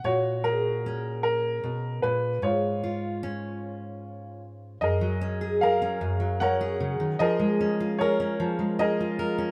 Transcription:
<<
  \new Staff \with { instrumentName = "Upright piano" } { \time 3/4 \key fis \major \tempo 4 = 76 << { cis''8 ais'4 ais'4 b'8 | cis''2~ cis''8 r8 | dis''4 eis''4 fis''4 | dis''4 cis''4 dis''4 | } \\ { fis'4. r4. | eis'2~ eis'8 r8 | <gis' ais'>4 <gis' ais'>4 <ais' cis''>4 | <gis' ais'>4 <gis' ais'>4 <gis' ais'>4 | } >> }
  \new Staff \with { instrumentName = "Steel-string acoustic guitar" } { \time 3/4 \key fis \major << { r8 gis'8 cis'2 | r8 eis'8 cis'2 | r8 cis'16 gis'16 ais'16 cis'8. cis'16 gis'8. | r8 cis'16 eis'16 ais'16 cis'8. cis'16 eis'16 ais'16 cis'16 | } \\ { ais,2 b,8 ais,8 | gis,2. | fis,16 fis4~ fis16 fis,16 fis8. cis16 dis16 | eis16 gis4~ gis16 eis16 gis4~ gis16 | } >> }
>>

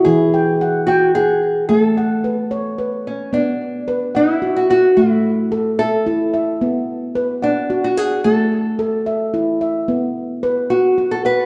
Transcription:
<<
  \new Staff \with { instrumentName = "Handpan" } { \time 6/8 \key b \dorian \tempo 4. = 73 << { r8 g''8 fis''4 fis''4~ | fis''8 fis''8 b'4 b'4~ | b'8 r4 fis''4 fis''8~ | fis''8 r4 e''4 e''8~ |
e''8 r4 fis''4 fis''8~ | fis''8 r4 e''4 e''8~ | e''8 r4 fis''4 fis''8 | } \\ { e'4 r8 g''4 r8 | a4 r8 cis''4 r8 | b4 b'4 fis'4 | a4 a'4 e'4 |
r4 b'4 fis'4 | a4 a'4 e'4 | r4 b'4 fis'4 | } >> }
  \new Staff \with { instrumentName = "Handpan" } { \time 6/8 \key b \dorian e2. | r2. | r2. | r2. |
b2. | r2. | b2. | }
  \new Staff \with { instrumentName = "Nylon-string guitar" } { \time 6/8 \key b \dorian gis'4. fis'8 gis'4 | a'2~ a'8 cis'8 | d'4. e'8. fis'16 fis'8 | e'4 r8 a'4 r8 |
r4. d'8. fis'16 gis'8 | a'2~ a'8 r8 | r4. fis'8. a'16 b'8 | }
>>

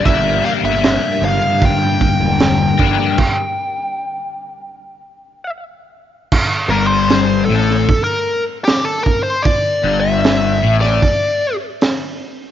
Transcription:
<<
  \new Staff \with { instrumentName = "Lead electric guitar" } { \time 4/4 \key g \dorian \tempo 4 = 77 e''8 f''16 e''8. f''8 g''2~ | g''2. r4 | r8 bes'16 c''8. a'8. bes'8 r16 g'16 a'16 bes'16 c''16 | d''8. e''4 d''4 r4 r16 | }
  \new Staff \with { instrumentName = "String machine" } { \time 4/4 \key g \dorian <g d' bes'>1 | r1 | r1 | r1 | }
  \new Staff \with { instrumentName = "Overdriven electric guitar" } { \clef bass \time 4/4 \key g \dorian <g, d g bes d' bes'>2.~ <g, d g bes d' bes'>8 <g, d g bes d' bes'>8 | r1 | r8 g,4 a,8 r2 | r8 g,4 a,8 r2 | }
  \new Staff \with { instrumentName = "Fingered electric bass" } { \clef bass \time 4/4 \key g \dorian g,,8 r16 g,,8 r16 g,,16 r16 g,8 r16 e,,8. g,,16 r16 | r1 | r8 g,,4 a,,8 r2 | r8 g,,4 a,,8 r2 | }
  \new DrumStaff \with { instrumentName = "Drums" } \drummode { \time 4/4 <hho bd>8 hho8 <hho sn>8 hho8 <hho bd>8 <hho bd>8 <hho sn>8 <hho bd>8 | <cymc bd>4 r4 r4 r4 | <cymc bd>4 <hho sn>8 sn16 sn16 <hho bd>4 <hho sn>8 bd8 | <hho bd>4 <hho sn>8. sn16 <hho bd>4 <hho sn>4 | }
>>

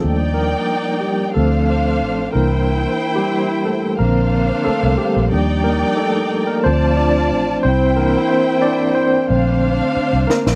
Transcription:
<<
  \new Staff \with { instrumentName = "String section" } { \time 4/4 \key ees \lydian \tempo 4 = 91 <ees' d'' g''>2 <d' c'' f''>4. <e' c'' g''>8~ | <e' c'' g''>2 <d' c'' f''>2 | <ees' d'' g''>2 <f' d'' a''>4. <e' c'' g''>8~ | <e' c'' g''>2 <d' c'' f''>2 | }
  \new Staff \with { instrumentName = "Tine electric piano" } { \time 4/4 \key ees \lydian <a a'>8 <bes bes'>4 <g g'>8 a'4. bes'8~ | bes'8. <g g'>8. <a a'>8 <bes bes'>4 <a a'>8 <g g'>8~ | <g g'>8 <bes bes'>8 <a a'>8. <bes bes'>16 c''8 <d' d''>4 <c' c''>8 | bes'8 <c' c''>8 <d' d''>8 <c' c''>2 <bes bes'>8 | }
  \new Staff \with { instrumentName = "Tine electric piano" } { \time 4/4 \key ees \lydian <f g d'>2 <f a c'>4. <e bes d'>8 | r2 <d f c'>2 | <f g d'>8 r4. <f a c'>4. r8 | <e bes d'>4. r8 <d a c'>4. r8 | }
  \new Staff \with { instrumentName = "Fingered electric bass" } { \clef bass \time 4/4 \key ees \lydian ees,4 r4 d,4 a,,8 c,8~ | c,8 r4. bes,,4 r16 c,16 r16 bes,,16 | ees,4 r4 d,4 a,,8 c,8~ | c,8 r4. bes,,4 r16 c,16 r16 bes,,16 | }
  \new DrumStaff \with { instrumentName = "Drums" } \drummode { \time 4/4 r4 r4 r4 r4 | r4 r4 r4 r4 | r4 r4 r4 r4 | r4 r4 r4 r8 sn16 sn16 | }
>>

